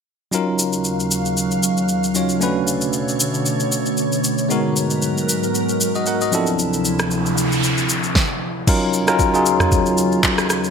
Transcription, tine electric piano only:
0.31 2.11 F#3 medium
0.31 2.11 C#4 medium
0.31 2.12 D#4 medium
0.31 2.12 F4 medium
0.31 2.13 A#4 medium
2.15 2.41 F#3 medium
2.15 2.40 C#4 medium
2.15 2.41 D#4 soft
2.15 2.42 F4 soft
2.15 2.42 C#5 medium
2.40 4.45 A3 medium
2.40 4.46 C#4 medium
2.40 4.46 D4 medium
2.40 4.47 F#4 medium
2.40 4.47 B4 medium
4.49 6.28 G#3 medium
4.49 6.29 B3 medium
4.49 6.29 D#4 medium
4.49 5.78 F#4 medium
4.49 5.79 A#4 medium
5.96 6.07 F#4 medium
5.96 6.06 D#5 medium
6.07 6.21 A#4 medium
6.07 6.20 F#5 medium
6.22 6.46 F#4 medium
6.22 6.46 D#5 medium
6.32 8.11 F3 medium
6.32 8.12 C4 medium
6.32 8.12 D4 medium
6.32 8.12 E4 medium
6.32 8.13 A4 medium
8.67 8.99 F#3 medium
8.67 8.99 C#4 medium
8.67 9.00 D#4 medium
8.67 9.00 F4 medium
8.67 9.00 A#4 medium
9.07 9.28 F#3 medium
9.07 9.28 C#4 medium
9.07 9.28 D#4 medium
9.07 9.29 F4 medium
9.07 9.29 A#4 medium
9.34 10.17 F#3 medium
9.34 10.17 C#4 medium
9.34 10.17 D#4 medium
9.34 10.17 F4 medium
9.34 10.18 G#4 medium

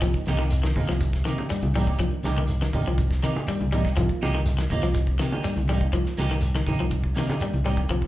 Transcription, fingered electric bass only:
0.02 0.13 C2 medium
0.27 0.72 C2 medium
0.76 0.88 D#2 medium
0.88 1.22 C2 medium
1.26 1.37 C3 medium
1.51 muted fingered electric bass stroke soft
1.62 1.96 C2 medium
1.99 2.11 C2 medium
2.23 2.69 C2 medium
2.74 2.85 D#2 medium
2.87 3.20 C2 medium
3.24 3.35 C3 medium
3.49 muted fingered electric bass stroke soft
3.61 3.94 C2 medium
3.97 4.08 C2 medium
4.22 4.67 C2 medium
4.71 4.82 D#2 medium
4.83 5.16 C2 medium
5.20 5.31 C3 medium
5.45 muted fingered electric bass stroke soft
5.56 5.90 C2 medium
5.93 6.04 C2 medium
6.18 6.63 C2 medium
6.67 6.78 D#2 medium
6.80 7.13 C2 medium
7.16 7.27 C3 medium
7.41 muted fingered electric bass stroke soft
7.54 7.87 C2 medium
7.89 8.01 C2 medium

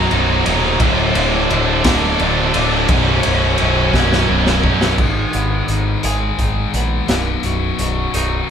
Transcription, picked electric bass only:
0.11 0.41 B0 medium
0.46 0.76 D#1 medium
0.81 1.11 D1 loud
1.16 1.46 D1 medium
1.51 1.81 D1 medium
1.85 2.15 D1 loud
2.21 2.51 D1 medium
2.56 2.86 D1 medium
2.89 3.19 B0 loud
3.26 3.55 B0 medium
3.60 3.90 B0 medium
3.94 4.24 B0 medium
4.30 4.60 B0 medium
4.64 4.94 B0 medium
4.98 5.25 G#1 medium
5.35 5.61 G#1 medium
5.68 5.95 G#1 medium
6.04 6.30 G#1 medium
6.39 6.65 G#1 medium
6.74 7.00 A#1 medium
7.09 7.35 B0 medium
7.44 7.70 B0 medium
7.79 8.06 B0 medium
8.14 8.40 B0 medium

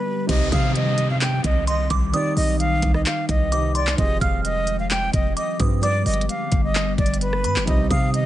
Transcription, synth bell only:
0.52 1.63 D#6 medium
1.68 1.89 C6 medium
1.90 2.12 D6 medium
2.14 3.02 D#6 loud
3.52 3.74 D6 medium
3.75 3.97 C6 medium
4.21 5.33 F6 medium
5.37 5.59 D6 medium
5.60 5.82 D#6 medium
5.83 7.40 D6 loud
7.45 7.66 B5 medium
7.91 8.26 D#6 medium

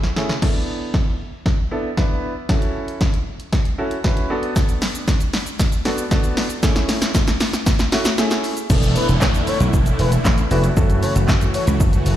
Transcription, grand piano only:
0.16 0.33 A3 medium
0.16 0.33 C#4 medium
0.16 0.34 E4 medium
0.16 0.34 G#4 medium
0.42 1.10 B3 medium
0.42 1.10 D4 medium
0.42 1.11 E4 medium
0.42 1.11 A4 medium
1.71 1.88 B3 medium
1.71 1.89 D4 medium
1.71 1.89 E4 medium
1.71 1.89 A4 medium
1.97 2.31 B3 medium
1.97 2.32 D4 medium
1.97 2.32 E4 medium
1.97 2.32 B4 medium
2.49 3.17 C#4 medium
2.49 3.17 E4 medium
2.49 3.18 F#4 medium
2.49 3.18 A4 medium
3.78 3.95 C#4 medium
3.78 3.96 E4 medium
3.78 3.96 F#4 medium
3.78 3.96 A4 medium
4.04 4.30 C#4 medium
4.04 4.30 E4 medium
4.04 4.29 F#4 medium
4.04 4.30 B4 medium
4.30 5.13 B3 medium
4.30 5.13 D4 medium
4.30 5.13 F#4 medium
4.30 5.13 A4 loud
5.85 6.02 B3 medium
5.85 6.02 D4 medium
5.85 6.02 F#4 medium
5.85 6.03 A4 medium
6.11 6.45 B3 medium
6.11 6.45 D4 medium
6.11 6.45 F#4 medium
6.11 6.45 A4 medium
6.63 7.31 A3 medium
6.63 7.31 C#4 medium
6.63 7.31 E4 medium
6.63 7.31 G#4 medium
7.92 8.09 A3 medium
7.92 8.09 C#4 medium
7.92 8.09 E4 medium
7.92 8.09 F#4 medium
8.18 8.52 A3 medium
8.18 8.52 C#4 medium
8.18 8.52 E4 medium
8.18 8.52 G#4 loud
8.18 8.66 E5 medium
8.70 9.38 A3 medium
8.70 9.38 B3 medium
8.70 9.38 D4 medium
8.70 9.38 E4 medium
8.70 9.38 A4 loud
10.51 10.68 A3 medium
10.51 10.68 B3 medium
10.51 10.68 D4 medium
10.51 10.68 E4 medium
10.51 10.68 F#4 medium
10.77 11.45 A3 medium
10.77 11.45 C#4 medium
10.77 11.45 E4 medium
10.77 11.45 F#4 medium
10.77 11.45 A4 loud

